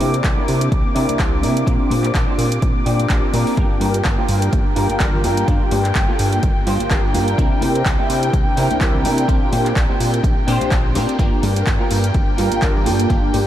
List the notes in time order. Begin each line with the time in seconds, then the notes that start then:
Already playing: A#3 C4 D4 E4 G4 D6
0.00 C3, muted clean electric guitar stroke, open hi-hat, tambourine, high conga
0.13 muted clean electric guitar stroke, closed hi-hat, tambourine
0.24 C2, kick, clap, closed hi-hat
0.37 D4 E4 A#4, tambourine, high conga
0.48 C3, open hi-hat
0.61 closed hi-hat
0.71 C2, muted clean electric guitar stroke, kick, closed hi-hat, tambourine, high conga
0.84 C3, tambourine
0.95 C3 D4 E4 A#4, open hi-hat, tambourine
1.09 C2, closed hi-hat, tambourine, high conga
1.19 C2 A#3 C4 D4 E4 G4, kick, clap, closed hi-hat
1.42 C3 D4 E4 A#4, open hi-hat, tambourine, high conga
1.57 closed hi-hat
1.66 A#1 A#3 C4 D4 F4 G4, kick, closed hi-hat, tambourine
1.80 tambourine
1.90 A#2, muted clean electric guitar stroke, open hi-hat, tambourine, high conga
2.04 muted clean electric guitar stroke, clap, closed hi-hat, tambourine
2.15 A#1, kick, clap, closed hi-hat
2.27 D4 G4 C5, tambourine, high conga
2.38 A#2, open hi-hat, tambourine
2.52 closed hi-hat
2.62 A#1, muted clean electric guitar stroke, kick, closed hi-hat, tambourine, high conga
2.75 tambourine
2.86 A#2 D4 G4 D5, open hi-hat, tambourine
2.99 closed hi-hat, tambourine, high conga
3.09 A#1 A#3 C4 D4 F4 G4, kick, clap, closed hi-hat, tambourine
3.24 tambourine
3.33 A#2 D4 G4 A#4, open hi-hat, tambourine, high conga
3.47 open hi-hat, tambourine
3.57 G1 A#3 D4 F4 G4 A#4 G5, kick, closed hi-hat
3.70 G2, tambourine
3.80 G2, muted clean electric guitar stroke, open hi-hat, tambourine, high conga
3.94 muted clean electric guitar stroke, closed hi-hat
4.05 G1, kick, clap, closed hi-hat
4.18 F4 G4 C5, tambourine, high conga
4.29 G2, open hi-hat, tambourine
4.42 closed hi-hat
4.52 G1, muted clean electric guitar stroke, kick, closed hi-hat, tambourine, high conga
4.66 tambourine
4.76 G2 F4 G4 A#4, open hi-hat, tambourine
4.89 G1, closed hi-hat, tambourine, high conga
5.00 G1 A#3 D4 F4 G4 A#4, kick, clap, closed hi-hat, tambourine
5.13 tambourine, low conga
5.24 G2 F4 G4 A#4, open hi-hat, tambourine, high conga
5.37 closed hi-hat, tambourine
5.47 G1 A#3 D4 F4 G4, kick, closed hi-hat
5.61 G2, tambourine
5.71 G2, muted clean electric guitar stroke, open hi-hat, tambourine, high conga
5.85 muted clean electric guitar stroke, clap, closed hi-hat, tambourine
5.95 G1, kick, clap, closed hi-hat
6.08 F4 G4 A4, tambourine, high conga
6.19 G2, open hi-hat, tambourine
6.33 closed hi-hat, tambourine
6.43 G1, muted clean electric guitar stroke, kick, closed hi-hat, tambourine, high conga
6.56 tambourine
6.67 G2 F4 G4 C5, open hi-hat, tambourine
6.80 G1, closed hi-hat, tambourine, high conga
6.91 G1 A#3 D4 F4 G4 A#4, kick, clap, closed hi-hat, tambourine
7.04 tambourine
7.14 G2 F4 G4 A#4, open hi-hat, tambourine, high conga
7.28 closed hi-hat
7.38 C2 C4 D4 E4 G4 A#4, kick, closed hi-hat, tambourine
7.52 tambourine
7.61 C3, muted clean electric guitar stroke, open hi-hat, tambourine, high conga
7.75 muted clean electric guitar stroke, closed hi-hat, tambourine
7.86 C2, kick, clap, closed hi-hat, tambourine
7.99 D4 E4 G4, tambourine, high conga
8.10 C3, open hi-hat, tambourine
8.23 closed hi-hat, tambourine
8.33 C2, muted clean electric guitar stroke, kick, closed hi-hat, tambourine, high conga
8.47 tambourine
8.57 C3 D4 E4 A#4, open hi-hat, tambourine
8.71 C2, closed hi-hat, tambourine, high conga
8.81 C2 C4 D4 E4 G4 A#4, kick, clap, closed hi-hat, tambourine
8.95 tambourine, low conga
9.04 C3 D4 E4 A#4, open hi-hat, tambourine, high conga
9.18 closed hi-hat, tambourine
9.28 A#1 C4 D4 F4 G4 A#4, kick, closed hi-hat
9.42 A#2, tambourine
9.52 A#2, muted clean electric guitar stroke, open hi-hat, tambourine, high conga
9.65 muted clean electric guitar stroke, clap, closed hi-hat, tambourine
9.76 A#1, kick, clap, closed hi-hat, tambourine
9.89 D4 G4 C5, tambourine, high conga
10.00 A#2, open hi-hat, tambourine
10.14 closed hi-hat
10.23 A#1, muted clean electric guitar stroke, kick, closed hi-hat, tambourine, high conga
10.37 A#2, tambourine
10.47 A#2 C4 D4 F4 G4 C5, open hi-hat, tambourine
10.61 A#1, closed hi-hat, tambourine, high conga
10.71 A#1, kick, clap, closed hi-hat, tambourine
10.86 tambourine
10.95 A#2 C4 D4 F4 G4 A#4 C5, open hi-hat, tambourine, high conga
11.09 closed hi-hat, tambourine
11.19 G1 A#3 D4 F4 G4 A#4 G5, kick, closed hi-hat, tambourine
11.34 tambourine
11.42 G2, muted clean electric guitar stroke, open hi-hat, tambourine, high conga
11.56 muted clean electric guitar stroke, closed hi-hat, tambourine
11.67 G1, kick, clap, closed hi-hat, tambourine
11.80 F4 G4 A#4, tambourine, high conga
11.91 G2, open hi-hat, tambourine
12.04 closed hi-hat
12.14 G1, muted clean electric guitar stroke, kick, closed hi-hat, tambourine, high conga
12.28 G2, tambourine
12.38 G2 F4 G4 A#4, open hi-hat, tambourine
12.52 G1, closed hi-hat, tambourine, high conga
12.62 G1 A#3 D4 F4 G4 A#4, kick, clap, closed hi-hat
12.76 tambourine, low conga
12.85 G2 F4 G4 A4, open hi-hat, tambourine, high conga
13.00 closed hi-hat, tambourine
13.10 G1 A#3 D4 F4 G4, kick, closed hi-hat, tambourine
13.24 tambourine
13.33 G2, muted clean electric guitar stroke, open hi-hat, tambourine, high conga